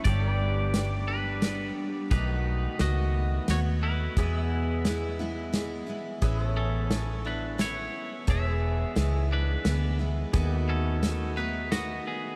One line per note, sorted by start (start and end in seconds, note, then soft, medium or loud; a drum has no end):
0.04 1.69 G1 medium
0.04 0.73 G2 medium
0.04 0.74 D3 medium
0.04 0.72 G3 medium
0.04 0.74 B3 medium
0.04 0.74 D4 medium
0.04 0.74 G4 medium
0.04 2.10 G4 medium
0.04 1.05 G4 medium
0.04 0.32 A4 medium
0.04 0.28 C#5 medium
0.04 1.04 D5 loud
0.04 kick loud
0.04 closed hi-hat medium
0.28 2.10 D5 medium
0.32 2.10 B4 medium
0.74 1.41 G3 soft
0.74 1.42 B3 medium
0.74 1.42 D4 medium
0.74 1.43 G4 medium
0.74 snare loud
0.74 closed hi-hat medium
1.08 1.74 D4 medium
1.08 1.73 B4 medium
1.42 2.11 G3 medium
1.42 2.12 B3 medium
1.42 2.12 D4 medium
1.42 2.12 G4 medium
1.42 snare medium
1.42 closed hi-hat medium
2.11 2.66 B1 loud
2.11 2.80 B2 medium
2.11 2.78 D#3 medium
2.11 2.79 A3 medium
2.11 2.81 B3 medium
2.11 2.76 D#4 medium
2.11 2.81 F#4 medium
2.11 2.32 G4 medium
2.11 2.81 B4 loud
2.11 4.15 B4 medium
2.11 4.16 D#5 medium
2.11 kick loud
2.11 closed hi-hat medium
2.32 4.15 F#4 medium
2.79 3.38 C#2 medium
2.79 3.48 D#3 medium
2.79 3.47 A3 medium
2.79 3.49 B3 medium
2.79 3.45 F#4 medium
2.79 3.49 F#4 medium
2.79 3.50 D#5 medium
2.79 snare medium
2.79 closed hi-hat medium
3.48 4.07 D#2 medium
3.48 4.17 A3 medium
3.48 4.18 B3 medium
3.48 4.18 F#4 medium
3.48 3.59 F#4 medium
3.48 3.59 C#5 medium
3.48 snare medium
3.48 closed hi-hat medium
3.83 5.85 E4 medium
3.83 5.85 B4 medium
4.17 4.85 E2 medium
4.17 5.81 E2 medium
4.17 4.86 B2 medium
4.17 4.84 E3 medium
4.17 4.84 G#3 medium
4.17 4.86 B3 medium
4.17 4.87 E4 medium
4.17 6.21 G#4 medium
4.17 6.22 B4 medium
4.17 4.40 D#5 medium
4.17 kick loud
4.17 closed hi-hat medium
4.40 6.22 E5 medium
4.85 5.19 E3 medium
4.85 5.20 G#3 medium
4.85 5.19 B3 medium
4.85 5.18 E4 medium
4.85 snare medium
4.85 closed hi-hat medium
5.19 5.51 E3 soft
5.19 5.52 G#3 medium
5.19 5.53 B3 medium
5.19 5.54 E4 medium
5.53 5.88 E3 medium
5.53 5.88 G#3 medium
5.53 5.87 B3 medium
5.53 5.85 E4 medium
5.53 snare medium
5.53 closed hi-hat medium
5.87 6.21 E3 soft
5.87 6.22 G#3 soft
5.87 6.21 B3 medium
5.87 6.22 E4 medium
6.22 7.86 A1 medium
6.22 6.91 A2 medium
6.22 6.90 E3 medium
6.22 6.91 B3 medium
6.22 6.91 C#4 medium
6.22 6.92 E4 medium
6.22 6.42 G#4 medium
6.22 6.48 B4 medium
6.22 8.27 E5 medium
6.22 kick loud
6.22 closed hi-hat medium
6.42 8.26 A4 medium
6.48 8.27 C#5 medium
6.57 7.22 C#4 medium
6.57 7.27 A4 medium
6.90 7.25 E3 medium
6.90 7.25 B3 medium
6.90 7.26 C#4 medium
6.90 7.23 E4 medium
6.90 snare medium
6.90 closed hi-hat medium
7.25 7.58 B3 soft
7.25 7.58 D4 medium
7.25 7.59 E4 medium
7.25 7.61 B4 medium
7.58 8.26 E3 medium
7.58 8.28 B3 medium
7.58 8.28 C#4 medium
7.58 8.25 E4 medium
7.58 8.28 E4 medium
7.58 8.30 C#5 medium
7.58 snare medium
7.58 closed hi-hat medium
8.27 8.83 E1 medium
8.27 8.96 E2 medium
8.27 8.96 B2 medium
8.27 8.94 E3 medium
8.27 8.95 G#3 medium
8.27 8.97 B3 medium
8.27 8.97 E4 medium
8.27 9.28 G#4 medium
8.27 8.48 A4 medium
8.27 8.54 C#5 medium
8.27 10.33 E5 medium
8.27 9.33 E5 loud
8.27 kick loud
8.27 closed hi-hat medium
8.48 10.32 G#4 medium
8.54 10.33 B4 medium
8.96 9.55 C#2 medium
8.96 9.63 E3 medium
8.96 9.65 G#3 medium
8.96 9.66 B3 medium
8.96 9.66 E4 medium
8.96 snare medium
8.96 closed hi-hat medium
9.32 9.97 D4 medium
9.32 9.97 B4 medium
9.65 10.24 D2 medium
9.65 10.00 E3 medium
9.65 9.99 G#3 medium
9.65 9.98 B3 medium
9.65 9.98 E4 medium
9.65 snare loud
9.65 closed hi-hat medium
9.99 10.33 E3 soft
9.99 10.34 G#3 soft
9.99 10.34 B3 soft
9.99 10.34 E4 medium
10.33 11.99 D#2 loud
10.33 11.01 D#3 medium
10.33 11.02 A3 loud
10.33 11.04 B3 loud
10.33 11.04 F#4 loud
10.33 10.58 G#4 medium
10.33 12.36 B4 medium
10.33 12.36 D#5 medium
10.33 kick loud
10.33 closed hi-hat medium
10.58 12.36 F#4 medium
10.69 11.34 C#4 medium
10.69 11.40 A4 medium
11.03 11.37 D#3 medium
11.03 11.38 A3 medium
11.03 11.37 B3 medium
11.03 11.36 F#4 medium
11.03 snare medium
11.03 closed hi-hat medium
11.37 11.71 A3 soft
11.37 11.72 B3 medium
11.37 11.70 D#4 medium
11.37 11.72 F#4 medium
11.37 11.72 B4 medium
11.72 12.36 D#3 medium
11.72 12.36 A3 medium
11.72 12.36 B3 medium
11.72 12.04 F#4 medium
11.72 12.36 F#4 medium
11.72 12.04 D#5 loud
11.72 snare medium
11.72 closed hi-hat medium
12.07 12.36 B3 medium
12.07 12.36 G#4 medium